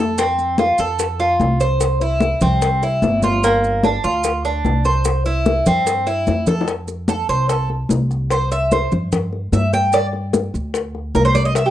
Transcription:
0.00 0.73 F2 medium
0.00 0.17 A4 medium
0.18 0.58 C4 medium
0.18 high bongo medium
0.18 high conga soft
0.18 maracas medium
0.38 high conga soft
0.38 maracas soft
0.58 0.79 F4 medium
0.58 high bongo medium
0.58 high conga loud
0.58 maracas soft
0.78 1.36 F2 medium
0.78 1.19 A4 medium
0.78 high bongo soft
0.78 high conga soft
0.78 maracas medium
0.99 high bongo medium
0.99 high conga soft
0.99 maracas medium
1.19 1.59 F4 medium
1.19 high bongo soft
1.19 high conga soft
1.19 maracas soft
1.40 2.35 C2 medium
1.40 high bongo soft
1.40 low bongo medium
1.40 high conga medium
1.40 maracas soft
1.60 2.00 C5 medium
1.60 high bongo soft
1.60 high conga soft
1.60 maracas medium
1.80 high bongo medium
1.80 high conga soft
1.80 maracas medium
2.01 2.41 E4 medium
2.01 high conga soft
2.01 maracas soft
2.20 high bongo medium
2.20 high conga loud
2.20 maracas soft
2.41 2.98 C2 medium
2.41 2.81 C4 medium
2.41 high bongo soft
2.41 high conga soft
2.41 low conga medium
2.41 maracas medium
2.61 high bongo medium
2.61 high conga soft
2.61 maracas medium
2.82 3.22 E4 medium
2.82 high bongo soft
2.82 high conga soft
2.82 maracas soft
3.02 3.98 G1 loud
3.02 high bongo soft
3.02 low bongo medium
3.02 high conga medium
3.02 maracas soft
3.22 3.43 F4 medium
3.22 high bongo soft
3.22 high conga medium
3.22 maracas medium
3.43 3.83 A#3 medium
3.43 high bongo medium
3.43 high conga soft
3.43 maracas medium
3.64 high conga soft
3.64 maracas soft
3.83 4.04 D4 medium
3.83 high bongo medium
3.83 high conga medium
3.83 maracas soft
4.04 4.61 D2 loud
4.04 4.43 F4 medium
4.04 high bongo soft
4.04 high conga soft
4.04 maracas medium
4.24 high bongo medium
4.24 high conga soft
4.24 maracas medium
4.45 4.84 D4 medium
4.45 high bongo soft
4.45 high conga soft
4.45 maracas soft
4.65 5.60 C2 medium
4.65 high bongo soft
4.65 low bongo medium
4.65 high conga medium
4.65 maracas soft
4.85 5.25 C5 medium
4.85 high bongo soft
4.85 high conga soft
4.85 maracas medium
5.05 high bongo medium
5.05 high conga soft
5.05 maracas medium
5.25 5.65 E4 medium
5.25 high conga soft
5.25 maracas soft
5.45 high bongo medium
5.45 high conga loud
5.45 maracas soft
5.66 6.23 G2 medium
5.66 6.06 C4 medium
5.66 high bongo soft
5.66 high conga soft
5.66 low conga medium
5.66 maracas medium
5.86 high bongo medium
5.86 high conga soft
5.86 maracas medium
6.07 6.46 E4 medium
6.07 high bongo soft
6.07 high conga soft
6.07 maracas soft
6.27 7.23 F2 medium
6.27 high bongo soft
6.27 low bongo medium
6.27 high conga medium
6.27 maracas soft
6.47 6.67 A4 medium
6.47 high bongo medium
6.47 low conga medium
6.47 maracas medium
6.61 low bongo loud
6.68 high bongo medium
6.68 high conga soft
6.68 maracas medium
6.88 high bongo soft
6.88 high conga soft
6.88 maracas medium
7.08 7.29 A4 medium
7.08 high bongo medium
7.08 high conga medium
7.08 maracas medium
7.29 7.86 C2 medium
7.29 7.49 C5 medium
7.29 high conga soft
7.29 maracas soft
7.49 7.69 A4 medium
7.49 high bongo medium
7.49 high conga soft
7.49 maracas medium
7.69 high bongo soft
7.69 high conga soft
7.89 8.85 C2 medium
7.89 high bongo soft
7.89 low bongo medium
7.89 high conga medium
7.89 maracas medium
8.11 high bongo soft
8.11 maracas soft
8.30 8.51 C5 medium
8.30 high bongo medium
8.30 high conga soft
8.30 maracas medium
8.51 8.71 E5 medium
8.51 high bongo soft
8.51 high conga soft
8.51 maracas medium
8.71 8.91 C5 medium
8.71 high bongo medium
8.71 high conga medium
8.71 maracas medium
8.92 9.49 G2 medium
8.92 high conga soft
8.92 low conga medium
8.92 maracas soft
9.12 high bongo medium
9.12 high conga soft
9.12 low conga medium
9.12 maracas medium
9.33 high bongo soft
9.33 high conga soft
9.52 10.48 G2 medium
9.52 9.73 E5 medium
9.52 high bongo soft
9.52 low bongo medium
9.52 high conga medium
9.52 maracas medium
9.73 9.93 G5 loud
9.73 high bongo soft
9.73 high conga medium
9.73 maracas soft
9.93 10.06 D5 medium
9.93 high bongo medium
9.93 high conga soft
9.93 maracas medium
10.13 high bongo soft
10.13 high conga soft
10.33 high bongo medium
10.33 high conga medium
10.33 maracas medium
10.54 11.11 D2 medium
10.54 high conga soft
10.54 maracas soft
10.74 high bongo medium
10.74 high conga soft
10.74 maracas medium
10.95 high bongo soft
10.95 high conga soft
11.15 11.70 C2 medium
11.15 11.24 A#4 medium
11.15 high bongo soft
11.15 low bongo medium
11.15 high conga medium
11.15 maracas medium
11.25 11.35 C5 medium
11.35 11.45 D5 loud
11.35 high bongo soft
11.35 high conga medium
11.35 maracas soft
11.45 11.55 D#5 medium
11.55 11.66 E5 medium
11.55 high bongo medium
11.55 high conga soft
11.55 maracas medium
11.66 11.70 G4 medium

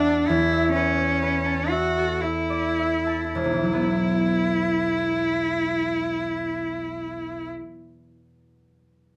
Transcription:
0.00 0.28 E2 soft
0.00 0.29 D4 soft
0.00 0.32 G4 soft
0.00 0.74 B4 soft
0.00 0.32 F#5 soft
0.00 0.32 G5 soft
0.08 1.45 A5 soft
0.27 3.38 E2 soft
0.27 0.73 E4 soft
0.53 1.70 E5 soft
0.74 1.71 C#4 soft
0.74 1.21 B4 soft
0.98 1.38 C#5 soft
1.22 5.12 B4 soft
1.46 3.05 A5 soft
1.69 2.23 F#4 soft
1.69 2.22 E5 soft
1.97 3.39 A4 soft
2.21 3.32 E4 soft
2.21 2.78 E5 soft
2.50 2.97 D5 soft
2.79 6.69 E5 soft
3.07 3.39 A5 soft
3.33 7.50 E1 soft
3.33 7.48 E4 soft
3.44 7.59 B1 soft
3.53 7.68 E3 soft
3.63 7.78 F#3 soft
3.73 7.88 B3 soft
3.83 7.98 E4 soft

